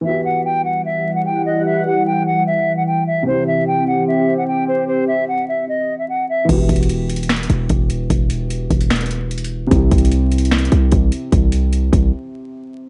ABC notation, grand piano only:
X:1
M:4/4
L:1/8
Q:1/4=149
K:Em
V:1 name="Grand piano"
[E,B,FG]8- | [E,B,FG]8 | [C,CEG]8- | [C,CEG]8 |
[E,B,FG]8- | [E,B,FG]8 | [C,CEG]8- | [C,CEG]8 |]